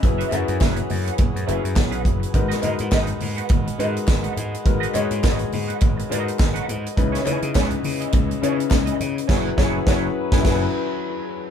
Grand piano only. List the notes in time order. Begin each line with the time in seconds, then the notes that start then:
0.03 F#3 C#4 E4 G#4 B4
0.32 F#3 C#4 E4 G#4 B4
1.47 F#3 C#4 E4 G#4 B4
2.34 G#3 D#4 F#4 A#4 B4
2.62 G#3 D#4 F#4 A#4 B4
3.78 G#3 D#4 F#4 A#4 B4
4.65 G#3 D#4 F#4 A#4 B4
4.94 G#3 D#4 F#4 A#4 C#5
6.09 G#3 D#4 F#4 A#4 B4
6.96 C#3 C#4 D#4 E4 B4
7.25 C#3 C#4 D#4 E4 B4
8.42 C#3 C#4 D#4 E4 B4
9.29 F#3 C#4 E4 G#4 B4
9.58 F#3 C#4 E4 G#4 B4
9.87 F#3 C#4 E4 G#4 B4
10.32 F#3 C#4 E4 G#4
10.40 B4
10.44 F#3 C#4 E4 G#4
10.52 B4